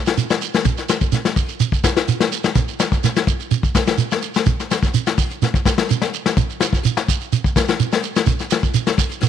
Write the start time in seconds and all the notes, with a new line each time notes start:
0.06 snare, closed hi-hat, shekere
0.18 closed hi-hat, shekere
0.30 snare, shekere
0.42 closed hi-hat, shekere
0.54 snare, closed hi-hat, shekere
0.65 kick, closed hi-hat, shekere
0.78 snare, shekere
0.89 snare, closed hi-hat, shekere
1.01 kick, closed hi-hat, shekere
1.12 snare, closed hi-hat, shekere
1.24 snare, closed hi-hat, shekere
1.36 kick, open hi-hat, shekere
1.49 closed hi-hat, shekere
1.60 closed hi-hat, shekere
1.72 kick, shekere
1.83 kick, snare, closed hi-hat, shekere
1.96 snare, closed hi-hat, shekere
2.07 closed hi-hat, shekere
2.19 snare, closed hi-hat, shekere
2.31 closed hi-hat, shekere
2.43 snare, closed hi-hat, shekere
2.55 kick, snare, closed hi-hat, shekere
2.67 closed hi-hat, shekere
2.79 snare, closed hi-hat, shekere
2.92 kick, snare, closed hi-hat, shekere
3.03 snare, closed hi-hat, shekere
3.16 snare, shekere
3.27 kick, closed hi-hat, shekere
3.39 closed hi-hat, shekere
3.51 closed hi-hat, shekere
3.63 kick, closed hi-hat, shekere
3.74 kick, snare, closed hi-hat, shekere
3.87 snare, closed hi-hat, shekere
3.98 closed hi-hat, shekere
4.11 snare, shekere
4.22 closed hi-hat, shekere
4.34 snare, closed hi-hat, shekere
4.46 kick, closed hi-hat, shekere
4.60 snare, shekere
4.70 snare, closed hi-hat, shekere
4.83 kick, snare, closed hi-hat, shekere
4.94 closed hi-hat, shekere
5.06 snare, closed hi-hat, shekere
5.17 kick, open hi-hat, shekere
5.30 closed hi-hat, shekere
5.42 snare, closed hi-hat, shekere
5.54 kick, snare, shekere
5.65 kick, snare, closed hi-hat, shekere
5.77 snare, closed hi-hat, shekere
5.89 closed hi-hat, shekere
6.01 snare, closed hi-hat, shekere
6.13 closed hi-hat, shekere
6.25 snare, closed hi-hat, shekere
6.37 kick, closed hi-hat, shekere
6.49 closed hi-hat, shekere
6.60 snare, closed hi-hat, shekere
6.73 kick, snare, shekere
6.83 closed hi-hat, shekere
6.97 snare, shekere
7.08 kick, closed hi-hat, shekere
7.21 closed hi-hat, shekere
7.32 closed hi-hat, shekere
7.44 kick, closed hi-hat, shekere
7.56 kick, snare, closed hi-hat, shekere
7.68 snare, closed hi-hat, shekere
7.79 closed hi-hat, shekere
7.92 snare, shekere
8.03 closed hi-hat, shekere
8.15 snare, closed hi-hat, shekere
8.26 kick, closed hi-hat, shekere
8.39 snare, shekere
8.50 snare, closed hi-hat, shekere
8.63 kick, closed hi-hat, shekere
8.74 closed hi-hat, shekere
8.86 snare, closed hi-hat, shekere
8.97 kick, snare, open hi-hat, shekere
9.09 closed hi-hat, shekere
9.20 snare, closed hi-hat, shekere